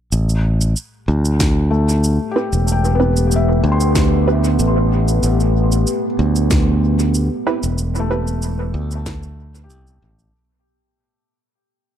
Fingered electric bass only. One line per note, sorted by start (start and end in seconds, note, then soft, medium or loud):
0.12 0.73 A1 medium
1.08 2.18 D2 medium
2.53 3.61 E1 medium
3.64 4.56 D2 medium
4.59 5.20 A1 medium
5.23 5.84 A1 medium
6.19 7.28 D2 medium
7.64 8.71 E1 medium
8.74 9.70 D2 medium
9.70 9.98 C2 medium
10.02 10.30 A1 medium